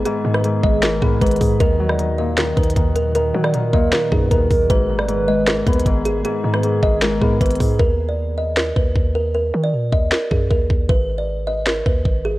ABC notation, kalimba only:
X:1
M:4/4
L:1/16
Q:1/4=155
K:Ebm
V:1 name="Kalimba"
A3 c z2 e2 B2 A2 c4 | B3 =d z2 e2 B2 c4 B2 | B3 =d z2 e2 B2 A2 B4 | c3 =d z2 e2 B2 c4 A2 |
A3 c z2 e2 B2 A2 c4 | B3 =d z2 e2 B2 c4 B2 | B3 =d z2 e2 B2 A2 B4 | c3 =d z2 e2 B2 c4 A2 |]